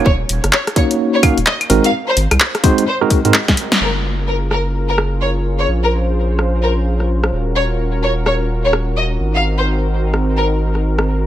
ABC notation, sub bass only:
X:1
M:4/4
L:1/16
Q:"Swing 16ths" 1/4=128
K:Ebdor
V:1 name="Sub bass" clef=bass
E,,, z E,,, G,,, z6 z E,,, z2 A,,, z | z2 A,,, C,, z6 z A,, z4 | G,,,16 | B,,,12- B,,,2 E,,,2- |
E,,,12- E,,,2 A,,,2- | A,,,16 |]